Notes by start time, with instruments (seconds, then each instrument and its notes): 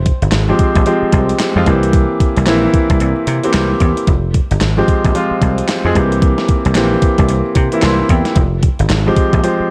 Already playing: slap bass F1
0.06 kick, closed hi-hat
0.22 slap bass G1, closed hi-hat
0.32 slap bass G#1, snare, clap, closed hi-hat
0.49 grand piano F3 G#3 C4 G4
0.59 kick, closed hi-hat
0.75 slap bass A#1, kick, closed hi-hat
0.86 grand piano F3 G#3 C4 G4, closed hi-hat
1.03 muted slap bass stroke
1.12 slap bass C2, kick, closed hi-hat
1.29 closed hi-hat
1.39 snare, clap, closed hi-hat
1.56 slap bass F2, grand piano F3 G#3 C4 F4
1.66 slap bass C2, grand piano E3 A#3 C4 G4, kick, closed hi-hat
1.83 closed hi-hat
1.93 kick, closed hi-hat
2.20 kick, closed hi-hat
2.37 slap bass C2, closed hi-hat
2.46 slap bass A#1, grand piano E3 A#3 C4 E4, snare, clap, closed hi-hat
2.74 kick, closed hi-hat
2.90 slap bass C2, kick, closed hi-hat
3.00 slap bass C2, closed hi-hat
3.27 slap bass C3, closed hi-hat
3.44 grand piano E3 A#3 C4 G4, closed hi-hat
3.54 slap bass C2, snare, clap, closed hi-hat
3.80 slap bass E2, kick, closed hi-hat
3.97 closed hi-hat
4.07 slap bass F1, kick, closed hi-hat
4.34 kick, closed hi-hat
4.51 slap bass G1, closed hi-hat
4.61 slap bass G#1, snare, clap, closed hi-hat
4.77 grand piano F3 G#3 C4 G4
4.88 kick, closed hi-hat
5.05 slap bass A#1, kick, closed hi-hat
5.15 grand piano F3 G#3 C4 F4, closed hi-hat
5.31 muted slap bass stroke
5.42 slap bass C2, kick, closed hi-hat
5.58 closed hi-hat
5.68 snare, clap, closed hi-hat
5.85 slap bass F2, grand piano F3 G#3 C4 G#4
5.95 slap bass C2, grand piano E3 A#3 C4 G4, kick, closed hi-hat
6.12 closed hi-hat
6.22 kick, closed hi-hat
6.38 snare
6.48 kick, closed hi-hat
6.65 slap bass C2, closed hi-hat
6.75 slap bass A#1, grand piano E3 A#3 C4 G4, snare, clap, closed hi-hat
7.02 kick, closed hi-hat
7.18 slap bass C2, kick, closed hi-hat
7.29 slap bass C2, closed hi-hat
7.55 slap bass C3, kick, closed hi-hat
7.72 grand piano E3 A#3 C4 E4, closed hi-hat
7.82 slap bass C2, grand piano C6, snare, clap, closed hi-hat
8.09 slap bass E2, grand piano G5, kick, closed hi-hat
8.25 snare, closed hi-hat
8.36 slap bass F1, kick, closed hi-hat
8.63 kick, closed hi-hat
8.79 slap bass G1, closed hi-hat
8.89 slap bass G#1, snare, clap, closed hi-hat
9.07 grand piano F3 G#3 C4 G4
9.16 kick, closed hi-hat
9.33 slap bass A#1, kick, closed hi-hat
9.43 grand piano F3 G#3 C4 G4, closed hi-hat
9.60 muted slap bass stroke